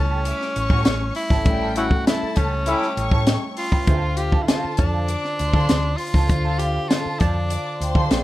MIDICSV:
0, 0, Header, 1, 11, 480
1, 0, Start_track
1, 0, Tempo, 603622
1, 1166, Time_signature, 4, 2, 24, 8
1, 6548, End_track
2, 0, Start_track
2, 0, Title_t, "Vibraphone"
2, 0, Program_c, 0, 11
2, 1172, Note_on_c, 0, 69, 58
2, 2138, Note_on_c, 0, 88, 52
2, 2141, Note_on_c, 0, 79, 80
2, 2690, Note_off_c, 0, 69, 0
2, 3301, Note_off_c, 0, 88, 0
2, 3302, Note_off_c, 0, 79, 0
2, 5232, Note_on_c, 0, 77, 81
2, 6223, Note_on_c, 0, 79, 72
2, 6548, Note_off_c, 0, 77, 0
2, 6548, Note_off_c, 0, 79, 0
2, 6548, End_track
3, 0, Start_track
3, 0, Title_t, "String section"
3, 0, Program_c, 1, 48
3, 0, Note_on_c, 1, 69, 102
3, 0, Note_on_c, 1, 81, 113
3, 176, Note_off_c, 1, 69, 0
3, 176, Note_off_c, 1, 81, 0
3, 207, Note_on_c, 1, 76, 86
3, 215, Note_on_c, 1, 86, 99
3, 398, Note_off_c, 1, 76, 0
3, 403, Note_off_c, 1, 86, 0
3, 440, Note_on_c, 1, 85, 121
3, 445, Note_on_c, 1, 73, 99
3, 894, Note_off_c, 1, 85, 0
3, 896, Note_off_c, 1, 73, 0
3, 1160, Note_on_c, 1, 55, 103
3, 1164, Note_on_c, 1, 79, 120
3, 1614, Note_off_c, 1, 55, 0
3, 1616, Note_off_c, 1, 79, 0
3, 1652, Note_on_c, 1, 81, 115
3, 1654, Note_on_c, 1, 69, 103
3, 2101, Note_off_c, 1, 81, 0
3, 2102, Note_off_c, 1, 69, 0
3, 2132, Note_on_c, 1, 86, 99
3, 2136, Note_on_c, 1, 76, 82
3, 2322, Note_off_c, 1, 86, 0
3, 2324, Note_off_c, 1, 76, 0
3, 2376, Note_on_c, 1, 85, 117
3, 2380, Note_on_c, 1, 73, 104
3, 2823, Note_off_c, 1, 85, 0
3, 2825, Note_off_c, 1, 73, 0
3, 3083, Note_on_c, 1, 77, 111
3, 3087, Note_on_c, 1, 65, 111
3, 3536, Note_off_c, 1, 77, 0
3, 3538, Note_off_c, 1, 65, 0
3, 3564, Note_on_c, 1, 69, 94
3, 3566, Note_on_c, 1, 81, 113
3, 4017, Note_off_c, 1, 69, 0
3, 4017, Note_off_c, 1, 81, 0
3, 4038, Note_on_c, 1, 86, 89
3, 4043, Note_on_c, 1, 74, 75
3, 4233, Note_off_c, 1, 86, 0
3, 4237, Note_off_c, 1, 74, 0
3, 4276, Note_on_c, 1, 72, 103
3, 4280, Note_on_c, 1, 84, 115
3, 4732, Note_off_c, 1, 72, 0
3, 4735, Note_off_c, 1, 84, 0
3, 4999, Note_on_c, 1, 65, 112
3, 4999, Note_on_c, 1, 77, 117
3, 5454, Note_off_c, 1, 65, 0
3, 5454, Note_off_c, 1, 77, 0
3, 5477, Note_on_c, 1, 69, 94
3, 5479, Note_on_c, 1, 81, 107
3, 5933, Note_off_c, 1, 69, 0
3, 5934, Note_off_c, 1, 81, 0
3, 5962, Note_on_c, 1, 74, 85
3, 5964, Note_on_c, 1, 86, 93
3, 6156, Note_off_c, 1, 74, 0
3, 6157, Note_off_c, 1, 86, 0
3, 6196, Note_on_c, 1, 84, 118
3, 6203, Note_on_c, 1, 72, 103
3, 6548, Note_off_c, 1, 72, 0
3, 6548, Note_off_c, 1, 84, 0
3, 6548, End_track
4, 0, Start_track
4, 0, Title_t, "Clean electric guitar"
4, 0, Program_c, 2, 27
4, 81, Note_on_c, 2, 69, 59
4, 86, Note_on_c, 2, 67, 55
4, 92, Note_on_c, 2, 61, 48
4, 196, Note_off_c, 2, 61, 0
4, 197, Note_off_c, 2, 67, 0
4, 200, Note_off_c, 2, 69, 0
4, 563, Note_on_c, 2, 69, 70
4, 568, Note_on_c, 2, 67, 75
4, 571, Note_on_c, 2, 61, 69
4, 677, Note_off_c, 2, 61, 0
4, 681, Note_off_c, 2, 67, 0
4, 684, Note_off_c, 2, 69, 0
4, 1041, Note_on_c, 2, 69, 82
4, 1046, Note_on_c, 2, 67, 62
4, 1052, Note_on_c, 2, 61, 66
4, 1161, Note_off_c, 2, 61, 0
4, 1166, Note_off_c, 2, 69, 0
4, 1167, Note_off_c, 2, 67, 0
4, 1286, Note_on_c, 2, 69, 75
4, 1290, Note_on_c, 2, 67, 68
4, 1295, Note_on_c, 2, 61, 60
4, 1394, Note_off_c, 2, 61, 0
4, 1402, Note_off_c, 2, 67, 0
4, 1403, Note_off_c, 2, 69, 0
4, 1885, Note_on_c, 2, 61, 64
4, 1885, Note_on_c, 2, 67, 65
4, 1890, Note_on_c, 2, 69, 70
4, 1996, Note_off_c, 2, 69, 0
4, 2003, Note_off_c, 2, 61, 0
4, 2003, Note_off_c, 2, 67, 0
4, 2123, Note_on_c, 2, 61, 75
4, 2128, Note_on_c, 2, 67, 78
4, 2131, Note_on_c, 2, 69, 94
4, 2275, Note_off_c, 2, 61, 0
4, 2277, Note_off_c, 2, 67, 0
4, 2279, Note_off_c, 2, 69, 0
4, 2485, Note_on_c, 2, 69, 58
4, 2488, Note_on_c, 2, 67, 49
4, 2496, Note_on_c, 2, 61, 40
4, 2596, Note_off_c, 2, 61, 0
4, 2601, Note_off_c, 2, 67, 0
4, 2603, Note_off_c, 2, 69, 0
4, 2957, Note_on_c, 2, 71, 68
4, 2965, Note_on_c, 2, 67, 68
4, 2968, Note_on_c, 2, 61, 64
4, 3075, Note_off_c, 2, 61, 0
4, 3078, Note_on_c, 2, 60, 76
4, 3082, Note_off_c, 2, 67, 0
4, 3085, Note_on_c, 2, 65, 90
4, 3086, Note_off_c, 2, 71, 0
4, 3089, Note_on_c, 2, 69, 89
4, 3198, Note_off_c, 2, 69, 0
4, 3206, Note_off_c, 2, 65, 0
4, 3241, Note_off_c, 2, 60, 0
4, 3437, Note_on_c, 2, 69, 59
4, 3443, Note_on_c, 2, 65, 53
4, 3448, Note_on_c, 2, 60, 47
4, 3552, Note_off_c, 2, 60, 0
4, 3556, Note_off_c, 2, 65, 0
4, 3559, Note_off_c, 2, 69, 0
4, 3562, Note_on_c, 2, 60, 72
4, 3566, Note_on_c, 2, 65, 75
4, 3571, Note_on_c, 2, 69, 79
4, 3723, Note_off_c, 2, 60, 0
4, 3725, Note_off_c, 2, 65, 0
4, 3727, Note_off_c, 2, 69, 0
4, 3921, Note_on_c, 2, 69, 50
4, 3928, Note_on_c, 2, 65, 54
4, 3930, Note_on_c, 2, 60, 49
4, 4034, Note_off_c, 2, 60, 0
4, 4042, Note_off_c, 2, 65, 0
4, 4042, Note_off_c, 2, 69, 0
4, 4400, Note_on_c, 2, 69, 73
4, 4404, Note_on_c, 2, 65, 63
4, 4409, Note_on_c, 2, 60, 60
4, 4516, Note_off_c, 2, 60, 0
4, 4522, Note_off_c, 2, 65, 0
4, 4523, Note_off_c, 2, 69, 0
4, 4891, Note_on_c, 2, 69, 69
4, 4896, Note_on_c, 2, 65, 58
4, 4901, Note_on_c, 2, 60, 57
4, 4994, Note_off_c, 2, 60, 0
4, 4999, Note_off_c, 2, 65, 0
4, 5002, Note_off_c, 2, 69, 0
4, 5127, Note_on_c, 2, 69, 78
4, 5134, Note_on_c, 2, 60, 64
4, 5137, Note_on_c, 2, 65, 71
4, 5244, Note_off_c, 2, 60, 0
4, 5246, Note_off_c, 2, 65, 0
4, 5248, Note_off_c, 2, 69, 0
4, 5732, Note_on_c, 2, 60, 62
4, 5738, Note_on_c, 2, 65, 64
4, 5742, Note_on_c, 2, 69, 61
4, 5841, Note_off_c, 2, 69, 0
4, 5847, Note_off_c, 2, 60, 0
4, 5850, Note_off_c, 2, 65, 0
4, 6328, Note_on_c, 2, 69, 72
4, 6333, Note_on_c, 2, 65, 66
4, 6339, Note_on_c, 2, 60, 55
4, 6440, Note_off_c, 2, 60, 0
4, 6448, Note_off_c, 2, 65, 0
4, 6454, Note_off_c, 2, 69, 0
4, 6548, End_track
5, 0, Start_track
5, 0, Title_t, "Tenor saxophone"
5, 0, Program_c, 3, 66
5, 0, Note_on_c, 3, 61, 107
5, 917, Note_off_c, 3, 61, 0
5, 922, Note_on_c, 3, 64, 105
5, 1372, Note_off_c, 3, 64, 0
5, 1413, Note_on_c, 3, 66, 102
5, 1633, Note_off_c, 3, 66, 0
5, 1650, Note_on_c, 3, 64, 105
5, 1885, Note_on_c, 3, 61, 100
5, 1896, Note_off_c, 3, 64, 0
5, 2632, Note_off_c, 3, 61, 0
5, 2844, Note_on_c, 3, 65, 99
5, 3314, Note_on_c, 3, 67, 99
5, 3326, Note_off_c, 3, 65, 0
5, 3517, Note_on_c, 3, 64, 74
5, 3529, Note_off_c, 3, 67, 0
5, 3555, Note_on_c, 3, 65, 103
5, 3567, Note_off_c, 3, 64, 0
5, 3797, Note_off_c, 3, 65, 0
5, 3802, Note_on_c, 3, 62, 109
5, 4746, Note_on_c, 3, 65, 109
5, 4758, Note_off_c, 3, 62, 0
5, 5236, Note_on_c, 3, 67, 97
5, 5248, Note_off_c, 3, 65, 0
5, 5474, Note_on_c, 3, 65, 102
5, 5486, Note_off_c, 3, 67, 0
5, 5721, Note_on_c, 3, 62, 101
5, 5733, Note_off_c, 3, 65, 0
5, 6470, Note_off_c, 3, 62, 0
5, 6548, End_track
6, 0, Start_track
6, 0, Title_t, "Tine electric piano"
6, 0, Program_c, 4, 4
6, 0, Control_c, 4, 64, 127
6, 0, Note_on_c, 4, 55, 67
6, 0, Note_on_c, 4, 57, 73
6, 0, Note_on_c, 4, 61, 72
6, 0, Note_on_c, 4, 64, 61
6, 1128, Note_off_c, 4, 57, 0
6, 1130, Note_off_c, 4, 64, 0
6, 1133, Note_off_c, 4, 55, 0
6, 1152, Note_on_c, 4, 57, 71
6, 1158, Note_on_c, 4, 76, 59
6, 1159, Note_off_c, 4, 61, 0
6, 1163, Note_on_c, 4, 55, 60
6, 1169, Note_on_c, 4, 61, 82
6, 3048, Note_off_c, 4, 57, 0
6, 3051, Note_off_c, 4, 76, 0
6, 3054, Note_off_c, 4, 55, 0
6, 3057, Note_off_c, 4, 61, 0
6, 3081, Note_on_c, 4, 50, 69
6, 3082, Note_on_c, 4, 62, 60
6, 3092, Note_on_c, 4, 64, 51
6, 3095, Note_on_c, 4, 72, 78
6, 3098, Control_c, 4, 64, 0
6, 3141, Note_off_c, 4, 64, 0
6, 3144, Note_on_c, 4, 65, 64
6, 3217, Control_c, 4, 64, 127
6, 4972, Note_off_c, 4, 50, 0
6, 4973, Note_off_c, 4, 62, 0
6, 4980, Note_off_c, 4, 72, 0
6, 4998, Note_on_c, 4, 50, 74
6, 5003, Note_on_c, 4, 62, 70
6, 5004, Note_off_c, 4, 65, 0
6, 5013, Note_on_c, 4, 65, 66
6, 5020, Note_on_c, 4, 72, 71
6, 6414, Note_off_c, 4, 50, 0
6, 6416, Note_off_c, 4, 62, 0
6, 6421, Note_off_c, 4, 65, 0
6, 6425, Note_off_c, 4, 72, 0
6, 6446, Note_on_c, 4, 58, 76
6, 6451, Note_on_c, 4, 68, 74
6, 6452, Note_on_c, 4, 72, 72
6, 6456, Note_on_c, 4, 74, 89
6, 6459, Control_c, 4, 64, 0
6, 6548, Note_off_c, 4, 58, 0
6, 6548, Note_off_c, 4, 68, 0
6, 6548, Note_off_c, 4, 72, 0
6, 6548, Note_off_c, 4, 74, 0
6, 6548, End_track
7, 0, Start_track
7, 0, Title_t, "Horn section"
7, 0, Program_c, 5, 61
7, 1398, Note_on_c, 5, 57, 75
7, 1399, Note_on_c, 5, 64, 84
7, 1400, Note_on_c, 5, 61, 78
7, 1503, Note_off_c, 5, 57, 0
7, 1504, Note_off_c, 5, 64, 0
7, 1505, Note_off_c, 5, 61, 0
7, 2125, Note_on_c, 5, 61, 75
7, 2125, Note_on_c, 5, 64, 99
7, 2126, Note_on_c, 5, 57, 86
7, 2278, Note_off_c, 5, 64, 0
7, 2279, Note_off_c, 5, 57, 0
7, 2279, Note_off_c, 5, 61, 0
7, 6548, End_track
8, 0, Start_track
8, 0, Title_t, "Fingered electric bass"
8, 0, Program_c, 6, 33
8, 0, Note_on_c, 6, 37, 96
8, 249, Note_off_c, 6, 37, 0
8, 448, Note_on_c, 6, 33, 102
8, 541, Note_off_c, 6, 33, 0
8, 560, Note_on_c, 6, 45, 107
8, 656, Note_off_c, 6, 45, 0
8, 682, Note_on_c, 6, 33, 105
8, 872, Note_off_c, 6, 33, 0
8, 1037, Note_on_c, 6, 32, 86
8, 1161, Note_off_c, 6, 32, 0
8, 1161, Note_on_c, 6, 33, 100
8, 1539, Note_off_c, 6, 33, 0
8, 1883, Note_on_c, 6, 37, 96
8, 2166, Note_off_c, 6, 37, 0
8, 2362, Note_on_c, 6, 33, 96
8, 2458, Note_off_c, 6, 33, 0
8, 2481, Note_on_c, 6, 45, 92
8, 2671, Note_off_c, 6, 45, 0
8, 3084, Note_on_c, 6, 38, 104
8, 3461, Note_off_c, 6, 38, 0
8, 3809, Note_on_c, 6, 41, 100
8, 4090, Note_off_c, 6, 41, 0
8, 4292, Note_on_c, 6, 38, 91
8, 4384, Note_off_c, 6, 38, 0
8, 4403, Note_on_c, 6, 50, 101
8, 4498, Note_off_c, 6, 50, 0
8, 4540, Note_on_c, 6, 38, 103
8, 4723, Note_off_c, 6, 38, 0
8, 4886, Note_on_c, 6, 37, 94
8, 4980, Note_off_c, 6, 37, 0
8, 5006, Note_on_c, 6, 38, 101
8, 5382, Note_off_c, 6, 38, 0
8, 5731, Note_on_c, 6, 41, 93
8, 6012, Note_off_c, 6, 41, 0
8, 6207, Note_on_c, 6, 38, 98
8, 6301, Note_off_c, 6, 38, 0
8, 6325, Note_on_c, 6, 50, 96
8, 6420, Note_off_c, 6, 50, 0
8, 6450, Note_on_c, 6, 34, 99
8, 6548, Note_off_c, 6, 34, 0
8, 6548, End_track
9, 0, Start_track
9, 0, Title_t, "Muted clean electric guitar strokes"
9, 206, Note_on_c, 9, 29, 41
9, 285, Note_off_c, 9, 29, 0
9, 331, Note_on_c, 9, 29, 43
9, 410, Note_off_c, 9, 29, 0
9, 686, Note_on_c, 9, 29, 45
9, 766, Note_off_c, 9, 29, 0
9, 805, Note_on_c, 9, 29, 39
9, 884, Note_off_c, 9, 29, 0
9, 1171, Note_on_c, 9, 29, 39
9, 1251, Note_off_c, 9, 29, 0
9, 1404, Note_on_c, 9, 29, 40
9, 1483, Note_off_c, 9, 29, 0
9, 1523, Note_on_c, 9, 29, 35
9, 1603, Note_off_c, 9, 29, 0
9, 2005, Note_on_c, 9, 29, 48
9, 2085, Note_off_c, 9, 29, 0
9, 2365, Note_on_c, 9, 29, 37
9, 2444, Note_off_c, 9, 29, 0
9, 2606, Note_on_c, 9, 29, 33
9, 2686, Note_off_c, 9, 29, 0
9, 2729, Note_on_c, 9, 29, 44
9, 2808, Note_off_c, 9, 29, 0
9, 3208, Note_on_c, 9, 29, 41
9, 3287, Note_off_c, 9, 29, 0
9, 3316, Note_on_c, 9, 29, 34
9, 3395, Note_off_c, 9, 29, 0
9, 3799, Note_on_c, 9, 29, 40
9, 3879, Note_off_c, 9, 29, 0
9, 4044, Note_on_c, 9, 29, 37
9, 4123, Note_off_c, 9, 29, 0
9, 4166, Note_on_c, 9, 29, 35
9, 4245, Note_off_c, 9, 29, 0
9, 4648, Note_on_c, 9, 29, 41
9, 4727, Note_off_c, 9, 29, 0
9, 5003, Note_on_c, 9, 29, 37
9, 5083, Note_off_c, 9, 29, 0
9, 5382, Note_on_c, 9, 29, 38
9, 5461, Note_off_c, 9, 29, 0
9, 5498, Note_on_c, 9, 29, 43
9, 5578, Note_off_c, 9, 29, 0
9, 5850, Note_on_c, 9, 29, 44
9, 5930, Note_off_c, 9, 29, 0
9, 5976, Note_on_c, 9, 29, 40
9, 6056, Note_off_c, 9, 29, 0
9, 6097, Note_on_c, 9, 29, 49
9, 6176, Note_off_c, 9, 29, 0
9, 6450, Note_on_c, 9, 29, 43
9, 6529, Note_off_c, 9, 29, 0
9, 6548, End_track
10, 0, Start_track
10, 0, Title_t, "Muted fingered electric bass strokes"
10, 1771, Note_on_c, 9, 29, 47
10, 1851, Note_off_c, 9, 29, 0
10, 3690, Note_on_c, 9, 29, 48
10, 3770, Note_off_c, 9, 29, 0
10, 5610, Note_on_c, 9, 29, 48
10, 5690, Note_off_c, 9, 29, 0
10, 6548, End_track
11, 0, Start_track
11, 0, Title_t, "Drums"
11, 200, Note_on_c, 9, 42, 79
11, 280, Note_off_c, 9, 42, 0
11, 330, Note_on_c, 9, 38, 37
11, 409, Note_off_c, 9, 38, 0
11, 444, Note_on_c, 9, 42, 72
11, 524, Note_off_c, 9, 42, 0
11, 556, Note_on_c, 9, 36, 102
11, 636, Note_off_c, 9, 36, 0
11, 676, Note_on_c, 9, 42, 78
11, 680, Note_on_c, 9, 38, 111
11, 755, Note_off_c, 9, 42, 0
11, 759, Note_off_c, 9, 38, 0
11, 912, Note_on_c, 9, 46, 76
11, 992, Note_off_c, 9, 46, 0
11, 1037, Note_on_c, 9, 36, 103
11, 1046, Note_on_c, 9, 38, 33
11, 1116, Note_off_c, 9, 36, 0
11, 1125, Note_off_c, 9, 38, 0
11, 1158, Note_on_c, 9, 42, 84
11, 1159, Note_on_c, 9, 36, 105
11, 1238, Note_off_c, 9, 36, 0
11, 1238, Note_off_c, 9, 42, 0
11, 1397, Note_on_c, 9, 42, 79
11, 1476, Note_off_c, 9, 42, 0
11, 1517, Note_on_c, 9, 36, 95
11, 1597, Note_off_c, 9, 36, 0
11, 1648, Note_on_c, 9, 42, 90
11, 1649, Note_on_c, 9, 38, 107
11, 1727, Note_off_c, 9, 42, 0
11, 1728, Note_off_c, 9, 38, 0
11, 1875, Note_on_c, 9, 42, 74
11, 1884, Note_on_c, 9, 36, 86
11, 1954, Note_off_c, 9, 42, 0
11, 1964, Note_off_c, 9, 36, 0
11, 2115, Note_on_c, 9, 42, 81
11, 2195, Note_off_c, 9, 42, 0
11, 2244, Note_on_c, 9, 38, 36
11, 2324, Note_off_c, 9, 38, 0
11, 2365, Note_on_c, 9, 42, 76
11, 2444, Note_off_c, 9, 42, 0
11, 2477, Note_on_c, 9, 36, 94
11, 2556, Note_off_c, 9, 36, 0
11, 2597, Note_on_c, 9, 42, 81
11, 2601, Note_on_c, 9, 38, 109
11, 2677, Note_off_c, 9, 42, 0
11, 2681, Note_off_c, 9, 38, 0
11, 2836, Note_on_c, 9, 46, 87
11, 2916, Note_off_c, 9, 46, 0
11, 2959, Note_on_c, 9, 36, 95
11, 3038, Note_off_c, 9, 36, 0
11, 3080, Note_on_c, 9, 42, 87
11, 3081, Note_on_c, 9, 36, 97
11, 3159, Note_off_c, 9, 42, 0
11, 3161, Note_off_c, 9, 36, 0
11, 3315, Note_on_c, 9, 42, 76
11, 3394, Note_off_c, 9, 42, 0
11, 3438, Note_on_c, 9, 36, 84
11, 3518, Note_off_c, 9, 36, 0
11, 3565, Note_on_c, 9, 42, 89
11, 3566, Note_on_c, 9, 38, 103
11, 3645, Note_off_c, 9, 42, 0
11, 3646, Note_off_c, 9, 38, 0
11, 3794, Note_on_c, 9, 42, 73
11, 3807, Note_on_c, 9, 36, 90
11, 3874, Note_off_c, 9, 42, 0
11, 3886, Note_off_c, 9, 36, 0
11, 4043, Note_on_c, 9, 42, 81
11, 4123, Note_off_c, 9, 42, 0
11, 4171, Note_on_c, 9, 38, 33
11, 4251, Note_off_c, 9, 38, 0
11, 4288, Note_on_c, 9, 42, 75
11, 4368, Note_off_c, 9, 42, 0
11, 4401, Note_on_c, 9, 36, 99
11, 4481, Note_off_c, 9, 36, 0
11, 4524, Note_on_c, 9, 42, 85
11, 4528, Note_on_c, 9, 38, 106
11, 4603, Note_off_c, 9, 42, 0
11, 4607, Note_off_c, 9, 38, 0
11, 4757, Note_on_c, 9, 46, 79
11, 4836, Note_off_c, 9, 46, 0
11, 4883, Note_on_c, 9, 36, 91
11, 4892, Note_on_c, 9, 38, 31
11, 4963, Note_off_c, 9, 36, 0
11, 4971, Note_off_c, 9, 38, 0
11, 5005, Note_on_c, 9, 42, 83
11, 5006, Note_on_c, 9, 36, 110
11, 5084, Note_off_c, 9, 42, 0
11, 5085, Note_off_c, 9, 36, 0
11, 5243, Note_on_c, 9, 42, 80
11, 5323, Note_off_c, 9, 42, 0
11, 5491, Note_on_c, 9, 42, 86
11, 5492, Note_on_c, 9, 38, 105
11, 5570, Note_off_c, 9, 42, 0
11, 5571, Note_off_c, 9, 38, 0
11, 5724, Note_on_c, 9, 42, 74
11, 5732, Note_on_c, 9, 36, 94
11, 5804, Note_off_c, 9, 42, 0
11, 5811, Note_off_c, 9, 36, 0
11, 5967, Note_on_c, 9, 42, 83
11, 6047, Note_off_c, 9, 42, 0
11, 6214, Note_on_c, 9, 42, 81
11, 6294, Note_off_c, 9, 42, 0
11, 6322, Note_on_c, 9, 36, 96
11, 6402, Note_off_c, 9, 36, 0
11, 6446, Note_on_c, 9, 42, 85
11, 6451, Note_on_c, 9, 38, 115
11, 6526, Note_off_c, 9, 42, 0
11, 6530, Note_off_c, 9, 38, 0
11, 6548, End_track
0, 0, End_of_file